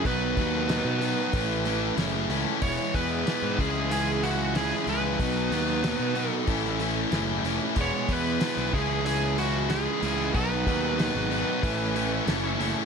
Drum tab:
HH |o-o-o-o-o-o-o-o-|o-o-o-o-o-o-o-o-|o-o-o-o-o-o-o-o-|o-o-o-o-o-o-o-o-|
SD |----o-------o---|----o-------o---|----o----o--o---|----o-------o---|
BD |o-o-----o-------|o-o---o---------|o-------o-------|o-o---o---------|

HH |o-o-o-o-o-o-o-o-|
SD |----o-------o---|
BD |o-o-----o-------|